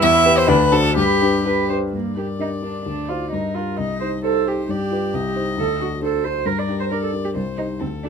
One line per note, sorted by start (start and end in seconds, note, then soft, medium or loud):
0.00 0.25 E2 medium
0.00 0.50 E4 loud
0.00 0.40 E5 loud
0.25 0.46 B3 medium
0.25 0.47 G4 medium
0.25 0.47 B4 medium
0.38 0.50 C5 loud
0.48 0.71 D2 loud
0.48 0.95 D4 loud
0.48 0.74 B4 loud
0.72 0.94 D4 medium
0.72 0.94 F#4 medium
0.72 0.97 A4 loud
0.72 0.95 C5 medium
0.96 1.21 G2 medium
0.96 1.69 G4 loud
0.96 1.40 B4 medium
1.22 1.44 D4 medium
1.22 1.44 G4 medium
1.22 1.44 B4 medium
1.45 1.67 D4 medium
1.45 1.68 G4 medium
1.45 1.68 B4 medium
1.69 1.91 D4 soft
1.69 1.91 G4 medium
1.69 1.91 B4 medium
1.69 1.77 C5 medium
1.93 2.16 G2 soft
1.93 2.15 A#3 medium
1.93 3.35 D5 soft
2.17 2.37 D4 soft
2.17 2.37 G4 soft
2.17 2.26 G4 soft
2.17 2.38 A#4 soft
2.39 2.60 D4 soft
2.39 2.49 D#4 medium
2.39 2.60 G4 soft
2.39 2.60 A#4 soft
2.62 2.83 D4 soft
2.62 2.85 D4 soft
2.62 2.84 G4 soft
2.62 2.84 A#4 soft
2.86 3.09 D2 soft
2.86 3.10 D4 medium
3.08 3.30 D#4 soft
3.08 3.31 F4 medium
3.08 3.31 F#4 soft
3.08 3.31 C5 soft
3.31 3.55 G2 soft
3.31 3.56 D#4 medium
3.31 3.79 A#4 soft
3.54 3.76 D4 soft
3.54 3.78 F4 medium
3.54 3.76 G4 soft
3.54 3.77 A#4 soft
3.77 4.01 C2 soft
3.77 4.00 D#4 medium
3.77 4.24 D#5 soft
4.00 4.21 D#4 soft
4.00 4.22 G4 soft
4.00 4.08 C5 medium
4.00 4.22 C5 soft
4.23 4.44 D#4 soft
4.23 4.44 G4 soft
4.23 4.49 A4 medium
4.23 4.45 C5 soft
4.23 4.72 C5 medium
4.46 4.67 D#4 soft
4.46 4.67 G4 soft
4.46 4.69 G4 medium
4.46 4.67 C5 soft
4.69 4.91 G2 soft
4.69 5.35 G4 medium
4.69 5.16 D5 medium
4.91 5.11 F4 soft
4.91 5.11 G4 soft
4.91 5.12 B4 soft
5.14 5.35 C2 medium
5.14 6.03 D#5 medium
5.35 5.55 D#4 soft
5.35 5.56 G4 soft
5.35 5.56 C5 soft
5.58 5.79 D2 soft
5.58 5.79 A4 medium
5.80 6.00 D4 soft
5.80 6.00 F#4 soft
5.80 5.89 F#4 medium
5.80 6.00 A4 soft
6.02 6.22 D4 soft
6.02 6.22 F#4 soft
6.02 6.22 A4 soft
6.02 6.25 A4 medium
6.02 6.49 C5 medium
6.24 6.44 D4 soft
6.24 6.44 F#4 soft
6.24 6.44 A4 soft
6.24 6.47 C5 medium
6.45 6.67 G2 soft
6.45 6.60 A#4 medium
6.45 6.93 A#4 soft
6.58 6.79 D5 medium
6.69 6.88 D4 soft
6.69 6.88 G4 soft
6.69 6.89 A#4 soft
6.80 6.84 C5 medium
6.91 7.11 D4 soft
6.91 7.11 G4 soft
6.91 7.01 A#4 medium
6.91 7.11 A#4 soft
6.91 7.35 D5 soft
7.03 7.11 A4 medium
7.13 7.33 D4 soft
7.13 7.33 G4 soft
7.13 7.33 A#4 soft
7.24 7.29 G4 medium
7.35 7.57 C2 soft
7.35 7.43 G3 medium
7.35 7.81 C5 soft
7.57 7.65 D#4 medium
7.57 7.79 D#4 soft
7.57 7.79 G4 soft
7.57 7.79 C5 soft
7.79 8.04 D2 soft
7.79 7.87 C4 medium
7.79 8.09 A4 soft
8.03 8.09 D4 soft
8.03 8.09 F#4 soft
8.03 8.09 A4 soft